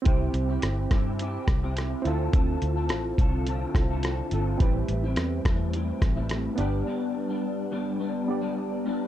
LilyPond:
<<
  \new Staff \with { instrumentName = "Synth keys" } { \time 4/4 \key c \major \tempo 4 = 106 <c' e' g' c''>2.~ <c' e' g' c''>8 <c' e' f' a'>8~ | <c' e' f' a'>2~ <c' e' f' a'>8 <c' e' f' a'>4. | <c' e' g' b'>2.~ <c' e' g' b'>8 <b d' g' b'>8~ | <b d' g' b'>2~ <b d' g' b'>8 <b d' g' d''>4. | }
  \new Staff \with { instrumentName = "Clean electric guitar" } { \time 4/4 \key c \major <c c' e' g'>8. <c' e' g'>8. <c c' e' g'>8 <c c' e' g'>8. <c c' e' g'>8. <d c' f' a'>8 | <d c' f' a'>8. <c' f' a'>8. <d c' f' a'>8 <d c' f' a'>8. <d c' f' a'>8. <d c' f' a'>8 | <a, g c' e'>8. <g c' e'>8. <a, g c' e'>8 <a, g c' e'>8. <a, g c' e'>8. <g, g b d'>8 | <g, g b d'>8. <g b d'>8. <g, g b d'>8 <g, g b d'>8. <g, g b d'>8. <g, g b d'>8 | }
  \new Staff \with { instrumentName = "Fingered electric bass" } { \clef bass \time 4/4 \key c \major c,8 c,8 g,,8 g,4 c,4 d,8 | d,8 d,8 a,,8 c,4 c,4 g,,8 | a,,8 a,,8 e,8 e,4 a,,4 g,,8 | r1 | }
  \new DrumStaff \with { instrumentName = "Drums" } \drummode { \time 4/4 <hh bd>8 hh8 <hh ss>8 <hh bd ss>8 hh8 <hh bd ss>8 <hh ss>8 hh8 | <hh bd>8 hh8 <hh ss>8 <hh bd>8 hh8 <hh bd ss>8 <hh ss>8 hh8 | <hh bd>8 hh8 <hh ss>8 <hh bd ss>8 hh8 <hh bd ss>8 <hh ss>8 hh8 | r4 r4 r4 r4 | }
>>